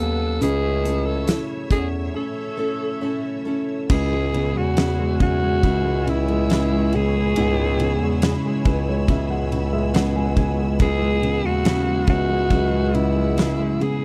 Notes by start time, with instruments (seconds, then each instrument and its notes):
Already playing: upright piano C#3 F#3 G#3 B3, string section B4 F#5 G#5 E6
0.00 bass clarinet D#2, steel-string acoustic guitar B3 E4, alto saxophone A4
0.41 bass clarinet C#2, steel-string acoustic guitar C#3 A3 C#4 E4, upright piano C#3, alto saxophone G#4, string section C#5 E5, closed hi-hat
0.84 upright piano A3, steel-string acoustic guitar C#4 E4 A4, closed hi-hat
1.06 alto saxophone A4
1.27 upright piano E4, snare, closed hi-hat
1.70 bass clarinet E2, upright piano A3, steel-string acoustic guitar C#4 E4, alto saxophone G#4, kick, closed hi-hat
2.14 upright piano C#4, alto saxophone A4
2.57 upright piano A3, steel-string acoustic guitar C#4 E4 A4
3.01 steel-string acoustic guitar A3 C#4 E4 A4, upright piano C#4
3.45 upright piano A3, steel-string acoustic guitar C#4 E4 A4
3.89 bass clarinet C#2, steel-string acoustic guitar C#3 G#3 B3 E4 G#4, upright piano C#3, alto saxophone G#4, string section C#5 G#5 B5 E6, kick, crash
4.12 upright piano G#3
4.33 upright piano C#3, steel-string acoustic guitar B3 E4 G#4, ride
4.56 bass clarinet E2, upright piano G#3, alto saxophone F#4
4.77 steel-string acoustic guitar C#3 G#3 B3 E4 G#4, upright piano C#3, snare, ride
4.99 upright piano G#3
5.20 upright piano C#3, steel-string acoustic guitar B3 E4 G#4, alto saxophone F#4, kick, ride
5.42 upright piano G#3
5.63 bass clarinet C#2, upright piano C#3, steel-string acoustic guitar G#3 B3 E4 G#4, kick, ride
5.85 upright piano G#3
6.07 upright piano C#3, alto saxophone E4, ride
6.28 upright piano G#3, ride
6.49 steel-string acoustic guitar C#3 G#3 B3 E4 G#4, upright piano C#3, snare, ride
6.72 upright piano G#3
6.92 upright piano C#3, steel-string acoustic guitar B3 E4 G#4, alto saxophone G#4, ride
7.16 upright piano G#3
7.36 bass clarinet C#2, upright piano G#2, steel-string acoustic guitar C#3 G#3 B3 E4 G#4, ride
7.59 upright piano G#3
7.79 upright piano C#3, steel-string acoustic guitar B3 E4 G#4, ride
8.01 bass clarinet E2, upright piano G#3
8.22 steel-string acoustic guitar C#3 G#3 B3 E4 G#4, upright piano C#3, snare, ride
8.45 upright piano G#3
8.65 bass clarinet C#2, upright piano C#3 B4, steel-string acoustic guitar B3 E4 G#4, kick, ride
8.89 upright piano G#3 C#5
9.08 bass clarinet C#2, upright piano C#3 E5, steel-string acoustic guitar G#3 B3 E4 G#4, kick, ride
9.30 upright piano G#3 F#5
9.52 upright piano C#3, ride
9.73 upright piano G#3 E5
9.94 steel-string acoustic guitar C#3 G#3 B3 E4 G#4, upright piano C#3 F#5, snare, ride
10.16 upright piano G#3 G#5
10.36 upright piano C#3 G#5, steel-string acoustic guitar B3 E4 G#4, kick, ride
10.59 upright piano G#3
10.79 bass clarinet C#2, steel-string acoustic guitar C#3 F#3 B3 E4 G#4, upright piano C#3, string section G#4 F#5, alto saxophone G#4, kick, ride
11.02 upright piano G#3
11.22 upright piano C#3, steel-string acoustic guitar B3 E4 G#4, ride
11.44 bass clarinet D#2, upright piano G#3, alto saxophone F#4
11.65 steel-string acoustic guitar C#3 F#3 B3 E4 G#4, upright piano C#3, snare, ride
11.87 upright piano G#3
12.07 bass clarinet C#2, upright piano C#3, steel-string acoustic guitar B3 E4 G#4, alto saxophone F#4, kick, ride
12.29 upright piano G#3
12.50 bass clarinet C#2, upright piano C#3, steel-string acoustic guitar F#3 B3 E4 G#4, kick, ride
12.73 upright piano G#3
12.95 upright piano C#3, alto saxophone E4, ride
13.16 upright piano G#3
13.37 steel-string acoustic guitar C#3 F#3 B3 E4 G#4, upright piano C#3, snare, ride
13.59 upright piano G#3
13.80 upright piano C#3, steel-string acoustic guitar B3 E4 G#4, alto saxophone G#4, ride